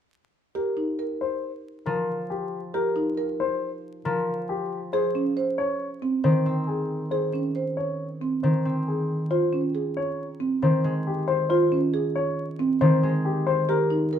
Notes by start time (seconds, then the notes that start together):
0.55 G4 A#4
0.77 D#4
0.99 A#4
1.21 C5
1.86 F3 A#4
2.30 G4
2.74 G4 A#4
2.96 D#4
3.17 A#4
3.40 C5
4.05 F3 A#4
4.49 G4
4.93 G#4 C5
5.15 C#4
5.37 C5
5.58 C#5
6.02 C4
6.24 D#3 C5
6.46 C4
6.67 G#4
7.11 G#4 C5
7.33 C#4
7.56 C5
7.77 C#5
8.21 C4
8.43 D#3 C5
8.65 C4
8.87 G#4
9.31 F4 C5
9.53 C#4
9.75 G#4
9.97 C#5
10.40 C4
10.62 D#3 C5
10.84 G#3
11.07 G4
11.28 C5
11.50 F4 C5
11.72 C#4
11.94 G#4
12.15 C#5
12.59 C4
12.81 D#3 C5
13.03 G#3
13.25 G4
13.47 C5
13.69 G4 A#4
13.90 D#4
14.13 A#4